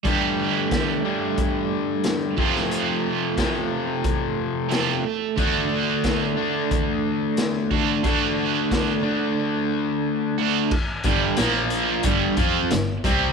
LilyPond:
<<
  \new Staff \with { instrumentName = "Overdriven electric guitar" } { \time 4/4 \key d \dorian \tempo 4 = 90 <g a d' g'>2.~ <g a d' g'>8 <f a c' f'>8~ | <f a c' f'>2. <f a c' f'>8 r8 | <d a d' fis'>2.~ <d a d' fis'>8 <d a d' fis'>8 | <d a d' fis'>2.~ <d a d' fis'>8 <d a d' fis'>8 |
r8 <g, d g>8 <bes, f bes>4 <g, d g>8 <f c' f'>8 <g, d>8 <c g c'>8 | }
  \new Staff \with { instrumentName = "Distorted electric guitar" } { \clef bass \time 4/4 \key d \dorian <g, d g>4. <g, d g>2 <f, c f>8~ | <f, c f>4 <f, c f>2~ <f, c f>8 r8 | <d a d'>4. <d a d'>2~ <d a d'>8 | <d a d'>4. <d a d'>2~ <d a d'>8 |
r8 <g, d g>8 <bes, f bes>4 <g, d g>8 <f c' f'>8 <g, d>8 <c g c'>8 | }
  \new Staff \with { instrumentName = "Double bass" } { \clef bass \time 4/4 \key d \dorian r1 | r1 | r1 | r1 |
r8 g,,8 bes,,4 g,,8 f,8 g,,8 c,8 | }
  \new DrumStaff \with { instrumentName = "Drums" } \drummode { \time 4/4 <hh bd>4 <hh bd sn>4 <hh bd>4 <hh sn>8 bd16 sn16 | hh4 <hh bd sn>4 <hh bd>4 <hh sn>4 | <hh bd>4 <hh bd sn>4 <hh bd>4 <hh sn>8 bd8 | <hh bd>4 <hh bd sn>4 r4 r4 |
<cymc bd>8 <hh bd>8 <hh sn>8 hh8 <hh bd>8 <hh bd>8 <hh sn>8 <hh bd>8 | }
>>